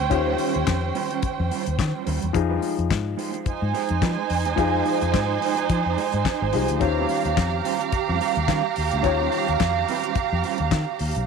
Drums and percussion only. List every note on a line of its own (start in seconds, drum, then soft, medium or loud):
0.11 kick medium
0.11 closed hi-hat medium
0.38 open hi-hat medium
0.54 closed hi-hat soft
0.67 kick loud
0.67 snare loud
0.67 clap medium
0.67 closed hi-hat medium
0.95 open hi-hat medium
1.11 closed hi-hat soft
1.23 kick loud
1.23 closed hi-hat medium
1.51 open hi-hat medium
1.66 closed hi-hat soft
1.79 kick loud
1.79 snare loud
1.79 clap medium
1.79 closed hi-hat medium
2.07 open hi-hat medium
2.22 closed hi-hat soft
2.34 kick loud
2.34 closed hi-hat medium
2.62 open hi-hat medium
2.79 closed hi-hat soft
2.91 kick loud
2.91 snare loud
2.91 clap medium
2.91 closed hi-hat medium
3.19 open hi-hat medium
3.34 closed hi-hat soft
3.46 kick medium
3.46 closed hi-hat medium
3.75 open hi-hat medium
3.89 closed hi-hat soft
4.02 kick loud
4.02 snare loud
4.02 clap medium
4.02 closed hi-hat medium
4.30 open hi-hat medium
4.45 closed hi-hat soft
4.58 kick medium
4.58 closed hi-hat medium
4.85 open hi-hat medium
5.01 closed hi-hat soft
5.14 kick loud
5.14 snare loud
5.14 clap medium
5.14 closed hi-hat medium
5.42 open hi-hat medium
5.57 closed hi-hat soft
5.70 kick loud
5.70 closed hi-hat medium
5.98 open hi-hat medium
6.12 closed hi-hat soft
6.25 kick loud
6.25 snare loud
6.25 clap medium
6.25 closed hi-hat medium
6.53 open hi-hat medium
6.68 closed hi-hat soft
6.81 kick medium
6.81 closed hi-hat medium
7.09 open hi-hat medium
7.25 closed hi-hat soft
7.37 kick loud
7.37 snare loud
7.37 clap medium
7.37 closed hi-hat medium
7.65 open hi-hat medium
7.81 closed hi-hat soft
7.92 kick loud
7.92 closed hi-hat medium
8.21 open hi-hat medium
8.35 closed hi-hat soft
8.48 kick loud
8.48 snare loud
8.48 clap medium
8.48 closed hi-hat medium
8.76 open hi-hat medium
8.91 closed hi-hat soft
9.04 kick medium
9.04 closed hi-hat medium
9.32 open hi-hat medium
9.48 closed hi-hat soft
9.60 kick loud
9.60 snare loud
9.60 clap medium
9.60 closed hi-hat medium
9.88 open hi-hat medium
10.03 closed hi-hat soft
10.15 kick loud
10.15 closed hi-hat medium
10.44 open hi-hat soft
10.58 closed hi-hat soft
10.71 kick loud
10.71 snare loud
10.71 clap medium
10.71 closed hi-hat medium
10.99 open hi-hat medium
11.15 closed hi-hat soft